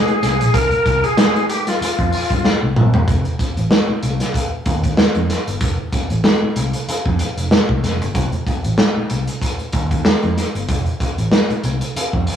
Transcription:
Already playing: G#4
0.08 closed hi-hat
0.23 C2, snare, closed hi-hat
0.41 A#1, closed hi-hat
0.54 C2 A#4, kick, closed hi-hat
0.71 closed hi-hat
0.86 C2, kick, closed hi-hat
1.04 G#4, closed hi-hat
1.17 snare, closed hi-hat
1.36 closed hi-hat
1.49 G4, closed hi-hat
1.67 F4, snare, closed hi-hat
1.81 muted fingered electric bass stroke, closed hi-hat
1.99 F2, kick, closed hi-hat
2.12 open hi-hat
2.30 G2, kick, closed hi-hat
2.44 snare
2.63 C2
2.76 A#1, mid tom
2.94 G1, floor tom
3.08 F1, kick, closed hi-hat
3.25 closed hi-hat
3.39 kick, closed hi-hat
3.57 A1, closed hi-hat
3.71 snare
3.89 muted fingered electric bass stroke
4.03 C2, closed hi-hat
4.20 snare, closed hi-hat
4.34 kick, closed hi-hat
4.66 D#2, kick, closed hi-hat
4.84 kick, closed hi-hat
4.97 snare
5.15 F2, closed hi-hat
5.30 snare, closed hi-hat
5.47 G1, closed hi-hat
5.61 F1, kick, closed hi-hat
5.93 kick, closed hi-hat
6.10 A1, closed hi-hat
6.24 snare
6.43 muted fingered electric bass stroke
6.56 C2, closed hi-hat
6.73 closed hi-hat
6.88 muted fingered electric bass stroke, closed hi-hat
7.06 F2, kick
7.19 closed hi-hat
7.37 F1, closed hi-hat
7.51 snare
7.69 C2, kick
7.83 F1, snare, closed hi-hat
8.01 G1, closed hi-hat
8.15 F1, kick, closed hi-hat
8.32 closed hi-hat
8.47 kick, closed hi-hat
8.64 A1, closed hi-hat
8.78 snare
8.97 muted fingered electric bass stroke
9.10 C2, closed hi-hat
9.27 closed hi-hat
9.42 kick, closed hi-hat
9.59 closed hi-hat
9.72 D#2, kick, closed hi-hat
9.91 kick, closed hi-hat
10.05 snare
10.22 F2, closed hi-hat
10.37 snare, closed hi-hat
10.55 G1, closed hi-hat
10.69 F1, kick, closed hi-hat
10.86 closed hi-hat
11.00 kick, closed hi-hat
11.18 A1, closed hi-hat
11.32 snare
11.50 muted fingered electric bass stroke, closed hi-hat
11.64 C2, closed hi-hat
11.81 closed hi-hat
11.96 muted fingered electric bass stroke, closed hi-hat
12.13 F2, kick
12.27 open hi-hat

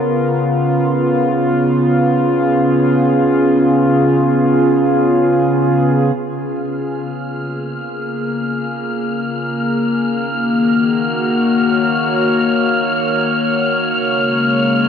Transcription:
Already playing: C#3 B3 F4 A#4
1.91 G#4
6.18 F6
7.32 A#3
10.05 D#3
10.46 F#4
11.38 C#5
13.90 C#3
14.04 G#3

